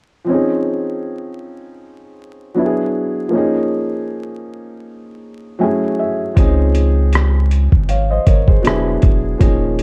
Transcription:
0.24 felt piano F3 C4
0.29 felt piano C#4 D#4
0.34 felt piano G#4
2.54 felt piano F#3 B3 D4 E4
2.59 felt piano F#4
2.66 felt piano G#4
3.28 felt piano F3 A#3
3.33 felt piano C#4 D#4
3.38 felt piano G#4
5.59 felt piano F#3 A3 C#4 E4 G#5
5.64 felt piano G#4
5.99 felt piano E5
6.35 sub bass C#2, felt piano F3 C4 C#4 D#4, kick, closed hi-hat
6.39 felt piano G#4
6.75 closed hi-hat
7.13 cross-stick, closed hi-hat
7.51 closed hi-hat
7.72 sub bass G#1, kick
7.89 felt piano C#5 F5, closed hi-hat
8.10 felt piano C5 D#5
8.27 sub bass G#1, felt piano A#4 C#5, kick, closed hi-hat
8.48 felt piano G#4 C5, kick
8.62 sub bass E1, felt piano F#3 B3 D4 E4, closed hi-hat
8.67 felt piano G#4, cross-stick
9.02 sub bass E1, kick, closed hi-hat
9.38 sub bass D#1, felt piano F3 A#3 C#4 D#4, kick, closed hi-hat
9.43 felt piano G#4
9.79 closed hi-hat

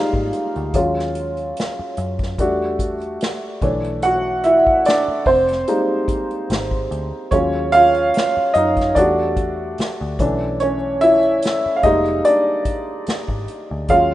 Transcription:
Already playing: upright piano G3 G#3 A#3 D#4 F4 D#5 F5
0.13 picked electric bass G#1, kick
0.33 closed hi-hat
0.56 picked electric bass D2, closed hi-hat
0.74 picked electric bass D#2, upright piano F#3 G#3 C#4 F4, kick, closed hi-hat
0.99 snare
1.15 closed hi-hat
1.37 closed hi-hat
1.57 snare, closed hi-hat
1.79 muted picked electric bass stroke
1.97 picked electric bass F#2, closed hi-hat
2.19 kick, snare, closed hi-hat
2.38 picked electric bass E2, upright piano G3 A3 D4 F#4, kick, closed hi-hat
2.79 kick, closed hi-hat
3.01 closed hi-hat
3.21 snare, closed hi-hat
3.62 picked electric bass B1, upright piano E3 A3 D4 C#5, kick, closed hi-hat
3.84 closed hi-hat
4.02 upright piano F#4 F#5, closed hi-hat
4.44 upright piano E4 E5, closed hi-hat
4.67 kick
4.85 upright piano D4 D5, snare, closed hi-hat
5.08 muted picked electric bass stroke
5.26 picked electric bass F1, upright piano C4 C5, kick, open hi-hat
5.48 snare, closed hi-hat
5.68 upright piano G3 G#3 A#3 D#4, closed hi-hat
6.08 kick, closed hi-hat
6.31 closed hi-hat
6.50 picked electric bass G#1, snare, closed hi-hat
6.71 kick
6.91 picked electric bass D2, closed hi-hat
7.31 picked electric bass D#2, upright piano F#3 G#3 C#4 F4 C#5, kick, closed hi-hat
7.72 upright piano F4 F5, closed hi-hat
7.94 closed hi-hat
8.14 snare, closed hi-hat
8.37 muted picked electric bass stroke
8.54 picked electric bass F#2, upright piano D#4 D#5, closed hi-hat
8.77 kick, snare, closed hi-hat
8.95 picked electric bass E2, upright piano G3 A3 D4 F#4 D5, kick, closed hi-hat
9.37 kick, closed hi-hat
9.78 muted picked electric bass stroke, snare, closed hi-hat
10.01 picked electric bass D2
10.19 picked electric bass B1, upright piano E3 A3 C#4 D4, kick, closed hi-hat
10.60 upright piano C#4 C#5, closed hi-hat
11.01 upright piano E4 E5, closed hi-hat
11.23 closed hi-hat
11.42 snare, closed hi-hat
11.66 muted picked electric bass stroke
11.76 upright piano F5
11.83 picked electric bass F1, upright piano G3 G#3 A#3 D#4 D#5, kick, closed hi-hat
12.06 closed hi-hat
12.25 upright piano D4 D5, closed hi-hat
12.65 kick, closed hi-hat
13.07 muted picked electric bass stroke, snare, closed hi-hat
13.28 picked electric bass G#1, kick
13.48 closed hi-hat
13.71 picked electric bass D2
13.88 picked electric bass D#2, upright piano F#3 G#3 C#4 F4 F5, kick, closed hi-hat

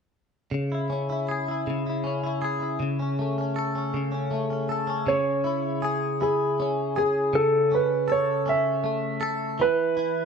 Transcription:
0.51 clean electric guitar C#3
0.72 clean electric guitar E4
0.90 clean electric guitar C#4
1.10 clean electric guitar E4
1.29 clean electric guitar G#4
1.48 clean electric guitar E4
1.67 clean electric guitar C#3
1.87 clean electric guitar E4
2.04 clean electric guitar C#4
2.24 clean electric guitar E4
2.42 clean electric guitar G#4
2.60 clean electric guitar E4
2.80 clean electric guitar C#3
2.99 clean electric guitar C#4
3.19 clean electric guitar A3
3.38 clean electric guitar C#4
3.56 clean electric guitar A4
3.75 clean electric guitar C#4
3.94 clean electric guitar C#3
4.12 clean electric guitar C#4
4.31 clean electric guitar A3
4.50 clean electric guitar C#4
4.69 clean electric guitar A4
4.87 clean electric guitar C#4
5.07 clean electric guitar C#3, grand piano C#5
5.44 clean electric guitar E4
5.82 clean electric guitar G#4
6.21 clean electric guitar E4, grand piano G#4
6.60 clean electric guitar C#4
6.96 clean electric guitar G#4, grand piano G#4
7.33 clean electric guitar C#3, grand piano A4
7.72 clean electric guitar C#4, grand piano B4
8.08 clean electric guitar A4, grand piano C#5
8.46 clean electric guitar C#4, grand piano E5
8.84 clean electric guitar A3
9.21 clean electric guitar A4
9.59 clean electric guitar E3, grand piano B4
9.97 clean electric guitar E4

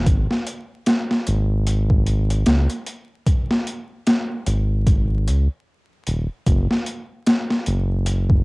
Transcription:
0.06 analog synth bass G#1, kick, closed hi-hat
0.31 snare
0.47 closed hi-hat
0.86 snare, closed hi-hat
1.11 snare
1.27 analog synth bass G#1, closed hi-hat
1.67 closed hi-hat
1.90 kick
2.07 closed hi-hat
2.30 closed hi-hat
2.46 analog synth bass C#2, snare, closed hi-hat
2.70 closed hi-hat
2.87 closed hi-hat
3.26 kick, closed hi-hat
3.51 snare
3.67 closed hi-hat
4.07 snare, closed hi-hat
4.47 analog synth bass G#1, closed hi-hat
4.87 kick, closed hi-hat
5.27 analog synth bass C#2, closed hi-hat
6.07 analog synth bass D#1, closed hi-hat
6.47 analog synth bass F#1, kick, closed hi-hat
6.71 snare
6.86 closed hi-hat
7.27 snare, closed hi-hat
7.51 snare
7.66 analog synth bass F#1, closed hi-hat
8.06 closed hi-hat
8.30 kick

